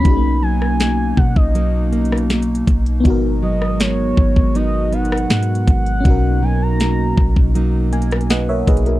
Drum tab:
HH |x-----------------------x-----------------------x-----------x---x---x---x---x---x---x-----x-----|x-----------------------x-----------------------x-----------x---x---x---x---x---x---x-----x-----|x-----------------------x-----------------------x-----------x--x--x--x--x-----------x--x--x--x--|
SD |------------------r-----o-----------------------------------------r-----o-----------------------|------------------r-----o-----------------------------------------r-----o-----------------------|------------------------o-----------------------------------------r-----o-----------------------|
BD |o-----------------------------------o-----o-----------------------------------------o-----------|o-----------------------------------o-----o-----------------------------------------o-----------|o-----------------------------------o-----o-----------------------------------------o-----------|